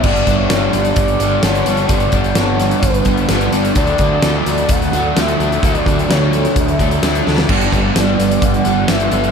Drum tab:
CC |x---------------|----------------|----------------|----------------|
HH |-xx-x-xxxxx-xxxx|xxxxx-xxxxxxxxxx|xxx-x-xxxxx-xxxx|xxxxx-xxxxxxxx--|
SD |----o-------o---|----o-o-----o---|----o-o-----o---|----o-------o-oo|
BD |o-o-----o-------|o-o-----o-o-----|o-o-----o-------|o-o-----o-o-----|

CC |x---------------|
HH |-xx-x-xxxxx-xxxx|
SD |----o-o-----o---|
BD |o-o-----o-------|